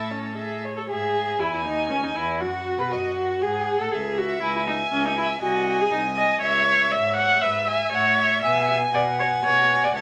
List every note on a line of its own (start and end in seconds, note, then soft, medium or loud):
0.00 0.66 A2 soft
0.00 0.12 E4 soft
0.00 0.60 A4 medium
0.00 0.12 E5 soft
0.11 0.36 C#4 soft
0.11 0.36 C#5 soft
0.37 0.73 G#4 soft
0.37 0.66 E5 soft
0.64 0.89 C#5 soft
0.77 0.82 A4 soft
0.88 1.40 G#2 soft
0.88 1.42 G#4 medium
0.88 1.40 E5 soft
1.39 1.51 E2 soft
1.39 1.52 E4 medium
1.39 1.51 E4 soft
1.39 2.41 G#5 medium
1.51 1.65 E2 soft
1.51 1.64 E4 soft
1.51 1.59 E4 soft
1.64 1.91 D#2 soft
1.64 1.89 D#4 medium
1.64 1.92 D#4 medium
1.90 2.04 C#2 soft
1.90 2.05 C#4 medium
1.90 2.04 C#4 soft
2.02 2.14 D#2 soft
2.02 2.15 D#4 soft
2.02 2.17 D#4 soft
2.15 2.42 E2 medium
2.15 2.23 E4 medium
2.15 2.42 E4 medium
2.40 2.78 F#2 medium
2.40 2.80 F#4 medium
2.40 2.81 F#4 medium
2.40 2.93 F#5 soft
2.78 2.92 B2 medium
2.78 2.92 B4 medium
2.78 2.91 B4 medium
2.91 3.42 F#2 soft
2.91 3.43 F#4 medium
2.91 3.44 F#4 medium
2.91 3.16 D#5 medium
3.17 3.95 F#5 medium
3.41 3.79 G#2 medium
3.41 3.80 G#4 medium
3.41 3.83 G#4 medium
3.78 3.85 A2 soft
3.78 3.92 A4 medium
3.78 3.93 A4 medium
3.92 4.37 C#2 medium
3.92 4.19 G#4 medium
3.92 4.44 E5 soft
4.18 4.42 F#4 medium
4.18 4.66 E5 soft
4.42 4.87 C#2 medium
4.42 4.55 E4 medium
4.42 5.41 G#5 medium
4.56 4.61 E4 medium
4.67 4.75 D#4 medium
4.67 5.16 E5 soft
4.92 5.36 C#2 medium
4.92 5.07 C#4 medium
5.06 5.17 D#4 medium
5.17 5.25 E4 medium
5.17 5.41 E5 medium
5.41 5.86 C2 medium
5.41 5.83 F#4 medium
5.41 6.40 D#5 medium
5.41 5.66 G#5 medium
5.69 6.16 G#5 medium
5.81 5.91 G#4 medium
5.92 6.36 C2 medium
5.92 6.00 D#4 medium
6.16 6.41 D#5 medium
6.16 6.41 G#5 medium
6.41 6.86 C#2 medium
6.41 6.93 C#5 loud
6.41 6.95 E5 medium
6.41 6.66 E5 medium
6.68 6.91 E5 medium
6.91 7.36 G#2 medium
6.91 7.44 C#5 medium
6.91 7.16 E5 medium
7.17 7.66 E5 medium
7.17 7.43 F#5 medium
7.41 7.87 G#2 medium
7.41 7.69 B4 medium
7.41 7.92 E5 medium
7.67 7.92 E5 medium
7.67 7.95 G#5 medium
7.92 8.37 A2 medium
7.92 8.42 C#5 loud
7.92 8.18 E5 medium
7.92 8.20 F#5 medium
8.19 8.43 E5 medium
8.19 8.46 E5 medium
8.43 8.88 B2 medium
8.43 8.68 E5 medium
8.43 8.93 G#5 medium
8.43 8.69 G#5 soft
8.68 8.76 E5 medium
8.68 9.19 G#5 medium
8.94 9.38 B2 medium
8.94 9.02 D5 medium
8.94 9.98 F#5 medium
9.19 9.27 C#5 medium
9.19 9.70 G#5 medium
9.45 9.89 B2 medium
9.45 9.85 C#5 medium
9.72 9.95 G#5 medium
9.84 9.95 D5 medium
9.95 10.01 C#2 medium
9.95 10.01 C#5 medium
9.95 10.01 E5 medium
9.95 10.01 A5 medium